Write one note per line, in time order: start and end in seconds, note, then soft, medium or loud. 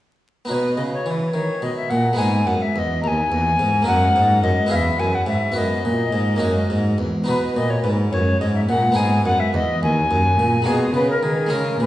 0.45 0.79 B2 medium
0.45 2.12 B3 medium
0.45 2.13 D#4 medium
0.45 2.14 F#4 soft
0.49 0.75 B2 medium
0.49 0.54 C#5 medium
0.53 0.75 B4 medium
0.76 1.03 C#3 soft
0.76 1.05 C#3 medium
0.76 0.82 D#5 medium
0.93 1.07 C#5 medium
1.06 1.31 E3 medium
1.06 1.33 E3 medium
1.06 1.11 C#5 medium
1.10 1.36 B4 medium
1.34 1.59 D#3 medium
1.34 1.42 D#3 medium
1.34 1.64 C#5 medium
1.62 1.87 B2 medium
1.62 1.71 B2 medium
1.62 1.76 D#5 medium
1.77 1.91 E5 medium
1.90 2.18 A#2 medium
1.90 2.16 A#2 medium
1.90 2.20 F#5 medium
2.13 2.43 G#3 medium
2.13 2.44 B3 medium
2.13 2.45 D#4 medium
2.18 2.46 G#2 medium
2.18 2.44 G#2 medium
2.18 3.84 G#4 medium
2.18 2.48 G#5 loud
2.46 2.54 F#2 medium
2.46 2.73 F#2 medium
2.46 2.63 F#5 loud
2.61 2.74 E5 medium
2.74 3.01 E2 medium
2.74 3.03 E2 medium
2.74 2.80 E5 medium
2.79 3.02 D#5 loud
3.02 3.29 D#2 medium
3.02 3.31 D#2 medium
3.02 3.08 A#5 loud
3.07 3.85 G#5 loud
3.31 3.59 E2 medium
3.31 3.57 E2 medium
3.59 3.85 G#2 medium
3.59 3.87 G#2 medium
3.82 4.12 A#3 medium
3.82 4.67 D#4 medium
3.82 4.67 A#4 medium
3.87 4.12 F#2 medium
3.87 4.15 F#2 medium
3.87 4.41 F#5 loud
4.15 4.43 G#2 medium
4.15 4.41 G#2 medium
4.42 4.51 F#2 medium
4.42 4.69 F#2 medium
4.42 4.72 D#5 loud
4.66 4.96 B3 medium
4.66 5.52 E4 medium
4.66 5.53 G#4 medium
4.71 4.96 E2 medium
4.71 4.99 E2 medium
4.71 4.76 F5 loud
4.75 5.01 E5 loud
4.99 5.25 F#2 medium
4.99 5.28 F#2 medium
4.99 5.16 G#5 loud
5.15 5.27 F#5 medium
5.27 5.53 G#2 medium
5.27 5.36 G#2 medium
5.27 5.58 E5 loud
5.52 5.82 B3 medium
5.52 6.38 F#4 medium
5.56 5.82 F#2 medium
5.56 5.87 F#2 medium
5.56 6.99 D#5 loud
5.85 6.11 A#2 medium
5.85 6.13 A#2 medium
6.13 6.39 G#2 medium
6.13 6.41 G#2 medium
6.36 6.67 A#3 medium
6.36 6.67 C#4 medium
6.36 7.24 F#4 medium
6.40 6.67 F#2 medium
6.40 6.70 F#2 medium
6.70 6.96 G#2 medium
6.70 6.99 G#2 medium
6.98 7.24 E2 medium
6.98 7.08 E2 medium
7.24 8.91 B3 medium
7.24 8.91 D#4 medium
7.24 8.92 F#4 medium
7.24 7.58 B4 medium
7.28 7.36 B2 medium
7.28 7.54 B2 medium
7.56 7.84 A#2 medium
7.56 7.82 A#2 medium
7.56 7.71 D#5 loud
7.70 7.81 C#5 medium
7.82 8.09 G#2 medium
7.82 8.12 G#2 medium
7.82 7.88 B4 medium
8.12 8.40 F#2 medium
8.12 8.38 F#2 medium
8.12 8.39 C#5 loud
8.40 8.68 G#2 medium
8.40 8.66 G#2 medium
8.40 8.46 D#5 medium
8.55 8.61 E5 medium
8.68 8.95 A#2 medium
8.68 8.94 A#2 medium
8.68 8.98 F#5 loud
8.92 10.60 B3 medium
8.92 10.61 D#4 medium
8.92 10.61 G#4 medium
8.96 9.24 G#2 medium
8.96 9.22 G#2 medium
8.96 9.24 G#5 loud
9.25 9.33 F#2 medium
9.25 9.51 F#2 medium
9.25 9.41 F#5 loud
9.40 9.54 E5 loud
9.54 9.62 E2 medium
9.54 9.80 E2 medium
9.54 9.82 D#5 loud
9.82 10.10 D#2 medium
9.82 10.08 D#2 medium
9.82 10.68 G#5 loud
10.11 10.36 F#2 medium
10.11 10.40 F#2 medium
10.39 10.66 A#2 medium
10.39 10.64 A#2 medium
10.62 10.94 B2 medium
10.62 11.45 G#3 medium
10.62 11.47 D#4 medium
10.62 11.48 G#4 medium
10.66 10.92 B2 medium
10.66 10.94 G#4 loud
10.94 11.19 C#3 medium
10.94 11.22 C#3 medium
10.94 11.08 B4 loud
11.10 11.25 A#4 loud
11.22 11.53 D#3 medium
11.22 11.48 D#3 medium
11.22 11.52 G#4 loud
11.47 11.76 G#3 medium
11.47 11.86 C#4 medium
11.47 11.86 G#4 medium
11.47 11.79 A#4 loud
11.51 11.79 C#3 medium
11.51 11.77 C#3 medium
11.80 11.86 A#2 medium
11.80 11.86 B4 medium